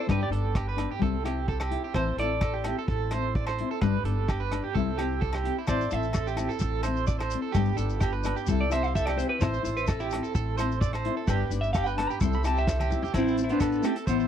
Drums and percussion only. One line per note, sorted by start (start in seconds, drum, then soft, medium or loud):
0.09 kick medium
0.09 cross-stick medium
0.09 low agogo medium
0.33 closed hi-hat soft
0.55 kick medium
0.55 cross-stick medium
0.55 low agogo medium
0.78 cross-stick medium
0.78 closed hi-hat medium
0.78 low agogo medium
1.02 kick loud
1.25 cross-stick medium
1.25 closed hi-hat soft
1.25 low agogo medium
1.48 kick medium
1.60 cross-stick medium
1.60 low agogo medium
1.71 closed hi-hat medium
1.94 kick medium
1.94 cross-stick medium
1.94 low agogo medium
2.18 closed hi-hat medium
2.41 kick loud
2.41 cross-stick medium
2.41 low agogo medium
2.64 cross-stick medium
2.64 closed hi-hat medium
2.64 low agogo medium
2.88 kick medium
3.11 cross-stick medium
3.11 closed hi-hat soft
3.11 low agogo medium
3.35 kick medium
3.47 cross-stick medium
3.47 low agogo medium
3.58 closed hi-hat soft
3.81 kick medium
3.81 cross-stick medium
3.81 low agogo medium
4.05 closed hi-hat soft
4.28 kick medium
4.28 cross-stick medium
4.28 low agogo medium
4.51 cross-stick medium
4.51 closed hi-hat medium
4.51 low agogo medium
4.75 kick medium
4.99 cross-stick medium
4.99 closed hi-hat soft
4.99 low agogo medium
5.22 kick medium
5.33 cross-stick medium
5.33 low agogo medium
5.45 closed hi-hat medium
5.67 kick medium
5.67 cross-stick medium
5.67 low agogo medium
5.67 shekere medium
5.81 shekere soft
5.91 closed hi-hat medium
5.91 shekere medium
6.03 shekere soft
6.13 kick medium
6.13 cross-stick medium
6.13 low agogo medium
6.13 shekere medium
6.27 shekere soft
6.37 cross-stick medium
6.37 closed hi-hat medium
6.37 low agogo medium
6.37 shekere medium
6.50 shekere soft
6.59 kick medium
6.59 shekere medium
6.83 cross-stick medium
6.83 closed hi-hat medium
6.83 low agogo medium
6.83 shekere medium
6.96 shekere soft
7.07 kick medium
7.07 shekere medium
7.20 cross-stick medium
7.20 low agogo medium
7.30 closed hi-hat medium
7.30 shekere medium
7.54 kick medium
7.54 cross-stick medium
7.54 low agogo medium
7.54 shekere medium
7.65 shekere soft
7.78 closed hi-hat soft
7.78 shekere medium
7.89 shekere soft
8.00 kick medium
8.00 cross-stick medium
8.00 low agogo medium
8.00 shekere medium
8.24 cross-stick medium
8.24 closed hi-hat medium
8.24 low agogo medium
8.24 shekere medium
8.37 shekere soft
8.47 kick medium
8.47 shekere loud
8.71 cross-stick medium
8.71 closed hi-hat soft
8.71 low agogo medium
8.71 shekere medium
8.84 shekere soft
8.95 kick medium
8.95 shekere medium
9.07 cross-stick medium
9.07 low agogo medium
9.19 closed hi-hat medium
9.19 shekere medium
9.41 kick medium
9.41 cross-stick medium
9.41 low agogo medium
9.41 shekere loud
9.54 shekere soft
9.65 closed hi-hat soft
9.65 shekere medium
9.77 shekere soft
9.87 kick loud
9.87 cross-stick medium
9.87 low agogo medium
9.87 shekere medium
10.00 shekere soft
10.11 cross-stick medium
10.11 closed hi-hat medium
10.11 low agogo medium
10.11 shekere medium
10.24 shekere soft
10.35 kick medium
10.35 shekere medium
10.58 cross-stick medium
10.58 closed hi-hat medium
10.58 low agogo medium
10.58 shekere medium
10.72 shekere soft
10.81 kick loud
10.81 shekere loud
10.93 cross-stick medium
10.93 low agogo medium
11.05 closed hi-hat medium
11.28 kick medium
11.28 cross-stick medium
11.28 low agogo medium
11.28 shekere medium
11.51 closed hi-hat soft
11.51 shekere medium
11.63 shekere soft
11.74 kick medium
11.74 cross-stick medium
11.74 low agogo medium
11.74 shekere loud
11.86 shekere soft
11.98 cross-stick medium
11.98 closed hi-hat medium
11.98 low agogo medium
12.10 shekere soft
12.21 kick medium
12.21 shekere loud
12.33 shekere soft
12.44 cross-stick medium
12.44 closed hi-hat medium
12.44 low agogo medium
12.44 shekere medium
12.57 shekere soft
12.67 kick medium
12.67 snare medium
12.67 shekere loud
12.80 high tom medium
12.80 low agogo medium
12.80 shekere soft
12.90 mid tom medium
12.90 shekere medium
13.02 floor tom medium
13.02 shekere soft
13.14 kick medium
13.14 cross-stick medium
13.14 closed hi-hat soft
13.14 low agogo medium
13.14 shekere medium
13.28 shekere soft
13.37 closed hi-hat soft
13.37 shekere medium
13.49 closed hi-hat medium
13.49 shekere soft
13.60 kick medium
13.60 cross-stick medium
13.60 closed hi-hat medium
13.60 low agogo medium
13.60 shekere medium
13.72 shekere soft
13.83 cross-stick medium
13.83 closed hi-hat medium
13.83 low agogo medium
13.83 shekere medium
13.96 closed hi-hat medium
13.96 shekere soft
14.07 kick medium
14.07 closed hi-hat soft
14.07 shekere loud
14.20 shekere soft